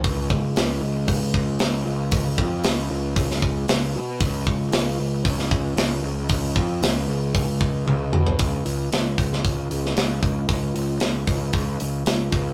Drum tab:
HH |o---o---o---o---|o---o---o---o---|o---o---o---o---|o---o---o-------|
SD |----o-------o---|----o----o--o---|----o----o--o---|----o-----------|
T1 |----------------|----------------|----------------|------------o---|
T2 |----------------|----------------|----------------|--------------o-|
FT |----------------|----------------|----------------|---------------o|
BD |o-o-----o-o-----|o-o-----o-o-----|o-o-----o-o-----|o-o-----o-o-----|

HH |o-o-o-o-o-o-o-o-|o-o-o-o-o-o-o-o-|
SD |----o--o---oo---|----o-------o---|
T1 |----------------|----------------|
T2 |----------------|----------------|
FT |----------------|----------------|
BD |o-----o-o-----o-|o-----o-o-----o-|